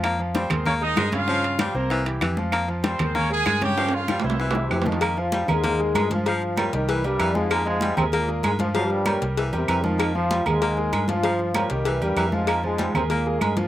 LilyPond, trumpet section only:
\new Staff \with { instrumentName = "Trumpet section" } { \time 4/4 \key ees \mixolydian \tempo 4 = 193 r4 <c' c''>4 <des' des''>8 <ees' ees''>4 <f' f''>8~ | <f' f''>4. <bes bes'>4 r4. | r4 <c' c''>4 <des' des''>8 <aes' aes''>4 <g' g''>8~ | <g' g''>8 <f' f''>4 <e' e''>4. r4 |
r1 | r1 | r1 | r1 |
r1 | r1 | r1 | }